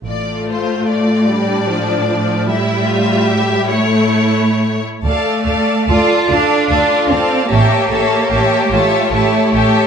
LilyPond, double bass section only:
\new Staff \with { instrumentName = "Double bass section" } { \clef bass \time 6/8 \key d \minor \tempo 4. = 49 a,,4 r2 | r2. | d,8 d,8 d,8 d,8 d,8 d,8 | a,,8 a,,8 a,,8 a,,8 a,,8 a,,8 | }